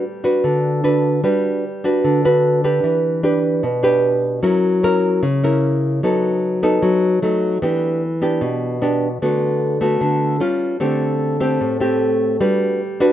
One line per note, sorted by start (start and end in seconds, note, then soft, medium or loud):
0.00 0.42 G3 medium
0.24 0.80 D4 medium
0.24 0.81 F#4 medium
0.24 0.81 B4 medium
0.44 1.22 D3 medium
0.84 1.20 D4 medium
0.84 1.21 F#4 medium
0.84 1.21 B4 medium
1.24 2.01 G3 medium
1.24 1.63 D4 soft
1.24 1.63 F#4 soft
1.24 1.64 B4 medium
1.84 2.21 D4 medium
1.84 2.21 F#4 medium
1.84 2.21 B4 medium
2.04 2.82 D3 medium
2.25 2.61 D4 medium
2.25 2.61 F#4 medium
2.25 2.61 B4 medium
2.64 3.22 D4 medium
2.64 3.22 G4 medium
2.64 3.22 B4 medium
2.84 3.61 E3 medium
3.23 3.63 D4 medium
3.23 3.63 G4 medium
3.23 3.63 B4 medium
3.63 4.41 B2 medium
3.83 4.40 D4 medium
3.83 4.40 G4 medium
3.83 4.40 B4 medium
4.43 5.21 F#3 medium
4.43 4.79 C#4 medium
4.43 4.80 E4 medium
4.43 4.80 A#4 medium
4.83 5.23 C#4 medium
4.83 5.23 E4 medium
4.83 5.23 A#4 medium
5.23 6.00 C#3 medium
5.44 6.00 C#4 medium
5.44 6.00 E4 medium
5.44 6.00 A#4 medium
6.03 6.80 F#3 medium
6.03 6.59 B3 medium
6.03 6.60 D#4 medium
6.03 6.60 A4 medium
6.63 7.19 B3 medium
6.63 7.19 D#4 medium
6.63 7.19 A4 medium
6.82 7.20 F#3 medium
7.22 7.59 F#3 medium
7.22 7.59 A3 medium
7.22 7.59 D#4 medium
7.62 8.40 E3 medium
7.62 8.01 B3 medium
7.62 8.02 D4 medium
7.62 8.02 G4 medium
8.22 8.78 B3 medium
8.22 8.78 D4 medium
8.22 8.79 G4 medium
8.41 9.19 B2 medium
8.82 9.07 B3 medium
8.82 9.07 D4 medium
8.82 9.08 G4 medium
9.22 9.99 D3 medium
9.22 9.78 A3 soft
9.22 9.78 B3 medium
9.22 9.79 F#4 medium
9.81 10.37 A3 medium
9.81 10.38 B3 medium
9.81 10.38 F#4 medium
10.01 10.39 D3 medium
10.40 10.77 G3 medium
10.40 10.77 C#4 medium
10.40 10.78 F4 medium
10.80 11.58 D3 medium
10.80 11.37 A3 medium
10.80 11.37 C4 medium
10.80 11.37 G4 medium
11.40 11.77 A3 medium
11.40 11.77 C4 medium
11.40 11.77 G4 medium
11.61 12.38 A2 medium
11.80 12.37 A3 medium
11.80 12.37 C4 medium
11.80 12.37 G4 medium
12.41 13.13 G3 medium
12.41 12.80 D4 medium
12.41 12.80 F#4 soft
12.41 12.80 B4 medium
13.00 13.13 D4 medium
13.00 13.13 F#4 medium
13.00 13.13 B4 medium